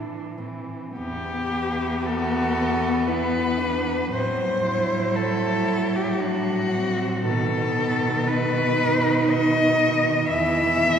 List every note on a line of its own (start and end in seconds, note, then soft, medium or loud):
0.00 0.38 E3 soft
0.00 0.39 D4 soft
0.38 0.46 A2 soft
0.38 0.95 E3 soft
0.38 0.96 C4 soft
0.96 4.07 E2 medium
0.96 4.07 B3 medium
0.96 2.08 G4 medium
2.06 3.10 F#4 medium
2.06 3.09 A4 medium
3.08 3.61 E4 medium
3.08 4.10 B4 medium
3.59 4.12 D4 medium
4.11 7.22 A2 medium
4.11 7.23 F#3 medium
4.11 4.64 C4 medium
4.11 5.18 C5 medium
4.63 6.22 E4 medium
5.16 5.97 A4 medium
5.95 6.22 G4 medium
6.21 6.73 D4 medium
6.21 7.25 F#4 medium
6.74 7.26 C4 medium
7.25 10.28 B2 medium
7.25 10.27 D#3 medium
7.25 8.31 B3 medium
7.25 8.29 A4 medium
8.28 10.31 D#4 medium
8.28 9.32 B4 loud
9.30 10.28 D#5 loud
10.29 10.99 E2 medium
10.29 10.99 E3 medium
10.29 10.99 E4 medium
10.29 10.99 E5 loud